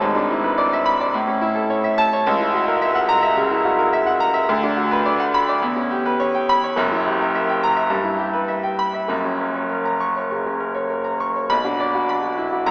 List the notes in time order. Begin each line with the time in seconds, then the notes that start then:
0.00 G#1 G#2
0.16 D4
0.30 E4
0.44 B4
0.58 D5
0.73 E5
0.86 B5
1.00 D5
1.14 A2
1.27 C#4
1.41 E4
1.55 A4
1.70 C#5
1.84 E5
1.98 A5
2.13 C#5
2.27 C#2
2.40 E4
2.53 F#4
2.68 A#4
2.82 E5
2.95 F#5
3.09 A#5
3.22 E5
3.37 C#3
3.51 E4
3.65 F#4
3.78 A#4
3.93 E5
4.06 F#5
4.20 A#5
4.34 E5
4.49 D2
4.63 D4
4.77 F#4
4.91 B4
5.05 D5
5.20 F#5
5.34 B5
5.48 D5
5.62 E2
5.76 C#4
5.91 G4
6.06 B4
6.20 C#5
6.35 G5
6.49 B5
6.64 C#5
6.76 F#1 F#2
6.92 E4
7.06 G4
7.21 A#4
7.35 E5
7.49 G5
7.63 A#5
7.76 E5
7.90 G2
8.04 E4
8.18 G4
8.33 B4
8.48 E5
8.63 G5
8.79 B5
8.94 E5
9.08 F#1 F#2
9.25 C#4
9.41 A#4
9.55 C#5
9.70 A#4
9.85 A#5
10.00 C#6
10.16 C#5
10.31 C#3
10.46 C#4
10.60 A#4
10.74 C#5
10.90 A#4
11.04 A#5
11.20 C#6
11.36 C#5
11.50 B1 B5
11.64 D4 F#4
11.80 D5
11.95 F#4
12.09 B5
12.22 F#4
12.37 E4
12.52 F#4
12.66 C#2 A#5